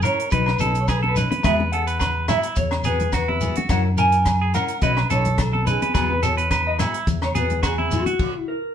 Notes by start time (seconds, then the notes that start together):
0.02 C#4 E4 A#4 C#5, closed hi-hat, low conga, low agogo, shekere
0.20 closed hi-hat
0.31 B1 F#3 D#4 B4, muted clean electric guitar stroke, kick, closed hi-hat, shekere
0.46 cross-stick, low agogo
0.59 B1 C#4 D#4 A4 B4, closed hi-hat, high conga, shekere
0.74 closed hi-hat, shekere
0.81 C#5
0.88 G#4 B4, kick, cross-stick, closed hi-hat, low agogo, shekere
0.97 A4
1.03 A4, high conga
1.08 B4
1.14 C#4 D#4 B4, closed hi-hat, low conga, shekere
1.31 B4, closed hi-hat, high conga
1.43 E2 G#3 B3 F#4 G#4 B4 E5, kick, cross-stick, closed hi-hat, low agogo, shekere
1.60 high conga
1.72 B3 G#4 A4 F#5, muted clean electric guitar stroke, closed hi-hat
1.87 B4, closed hi-hat, shekere
1.99 B4, kick, cross-stick, closed hi-hat, low agogo, shekere
2.28 B3 E4 F#4 G#4 E5, cross-stick, closed hi-hat, low conga, low agogo, shekere
2.43 closed hi-hat, shekere
2.56 E2 C#5, kick, closed hi-hat, shekere
2.71 cross-stick, low agogo
2.84 E2 B3 F#4 G#4 B4, closed hi-hat, high conga, shekere
3.00 closed hi-hat, low conga
3.12 F#4 B4, kick, cross-stick, closed hi-hat, low agogo, shekere
3.28 E4, high conga
3.41 B3 F#4 G#4, closed hi-hat, low conga, shekere
3.56 F#4, closed hi-hat, high conga
3.69 F#2 F#3 C#4 E4 A#4 F#5, kick, cross-stick, closed hi-hat, low agogo, shekere
3.97 C#4 E4 A#4 G#5, closed hi-hat, shekere
4.12 closed hi-hat, shekere
4.25 kick, cross-stick, closed hi-hat, low agogo, shekere
4.41 G#4
4.54 C#4 E4 A#4 F#5, closed hi-hat, low conga, low agogo, shekere
4.68 closed hi-hat, shekere
4.82 B1 F#3 C#4 B4 D#5, muted clean electric guitar stroke, kick, closed hi-hat, shekere
4.97 cross-stick, low agogo
5.09 B1 C#4 D#4 A4 B4 C#5, closed hi-hat, high conga, shekere
5.25 closed hi-hat, low conga
5.38 A4, kick, cross-stick, closed hi-hat, low agogo, shekere
5.53 A4, high conga
5.65 C#4 D#4 B4, closed hi-hat, low conga, shekere
5.69 G#4
5.82 B4, closed hi-hat, high conga
5.94 E2 F#3 B3 F#4 G#4 B4, kick, cross-stick, closed hi-hat, low agogo, shekere
6.10 B4, high conga
6.22 B3 F#4 G#4 A4 C#5, closed hi-hat, shekere
6.37 B4, closed hi-hat, shekere
6.51 B4, kick, cross-stick, closed hi-hat, low agogo, shekere
6.67 D#5
6.78 B3 E4 F#4 G#4 E5, cross-stick, closed hi-hat, low conga, low agogo, shekere
6.94 closed hi-hat, shekere
7.07 E2, kick, closed hi-hat, shekere
7.22 C#5, cross-stick, low agogo
7.34 E2 B3 F#4 G#4 B4, closed hi-hat, high conga, shekere
7.50 closed hi-hat, low conga
7.63 F#4 G#4, kick, cross-stick, closed hi-hat, low agogo, shekere
7.78 E4, high conga
7.91 B3 F#4 G#4, closed hi-hat, low conga, shekere
8.06 F#4, closed hi-hat, high conga
8.19 kick, crash
8.38 E4
8.48 A#4